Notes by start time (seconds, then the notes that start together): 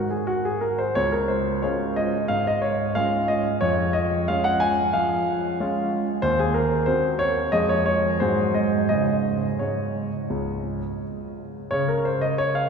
Already playing: F#4
0.10 G#4
0.27 F#4
0.45 G#4
0.61 A#4
0.78 C5
0.95 C#2 C#5
1.12 A#4
1.28 C5
1.62 G#3 C#4 F4 C#5
1.96 D#5
2.28 G#2 F5
2.47 D#5
2.62 C#5
2.95 G#3 C#4 F4 F5
3.28 D#5
3.61 F2 C#5
3.93 D#5
4.28 G#3 C#4 F4 F5
4.44 F#5
4.60 G#5
4.93 F3 F5
5.60 G#3 C#4 F4
6.22 D#2 C5
6.39 G#4
6.54 A#4
6.86 C4 F#4 C5
7.19 C#5
7.52 F2 F3 G#3 G#4 D#5
7.69 C#5
7.86 C#5
8.20 G#2 F#3 G#3 G#4 C5
8.54 D#5
8.89 C#3 G#3 G#4 D#5
9.59 G#2 C#5
10.30 C#2
11.71 C#3 C#5
11.88 A#4
12.05 C5
12.21 D#5
12.38 C#5
12.55 F5